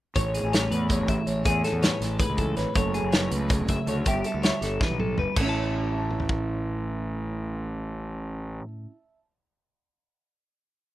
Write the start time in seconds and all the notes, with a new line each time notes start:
0.16 A1 A2 C#5, kick, closed hi-hat
0.34 G#4, closed hi-hat
0.43 A1
0.52 A4 C#5, snare, closed hi-hat
0.61 B4
0.70 E2 A3 B4, closed hi-hat
0.90 G#4 C#5, kick, closed hi-hat
1.00 A1
1.08 E3 E5, kick, closed hi-hat
1.27 A1 C#5, closed hi-hat
1.45 E2 A2 G#4 C#5, kick, closed hi-hat
1.64 G#4 A4, snare, closed hi-hat
1.73 E2
1.83 B4 C#5, snare, closed hi-hat
2.01 A1 A3 A4, snare, closed hi-hat
2.19 G#4 B4, kick, closed hi-hat
2.29 C#2
2.37 E3 A4, kick, closed hi-hat
2.57 G#1 B4 C#5, snare, closed hi-hat
2.75 F#1 F#3 A4 C#5, kick, closed hi-hat
2.94 G#4, closed hi-hat
3.03 F#1
3.12 B4 C#5, snare, closed hi-hat
3.31 C#2 A3 B4, closed hi-hat
3.50 G#4 C#5, kick, closed hi-hat
3.59 F#1
3.68 C#3 E5, kick, closed hi-hat
3.87 D2 A4 C#5, closed hi-hat
3.97 B4
4.06 G1 G3 G4 E5, kick, closed hi-hat
4.24 A4 E5, closed hi-hat
4.34 D2
4.43 C#5 E5, snare, closed hi-hat
4.61 G1 G4 A4, snare, closed hi-hat
4.80 E3 B4, kick, snare
4.90 B1
4.98 F#3 A4, mid tom
5.16 G1 G3 B4, floor tom
5.35 A1 A2 A4, kick, crash
5.41 C#4 C#5
5.45 E4 E5
5.49 A5
5.56 C#5
5.92 E5
5.98 A5
6.11 mid tom
6.20 floor tom
6.29 kick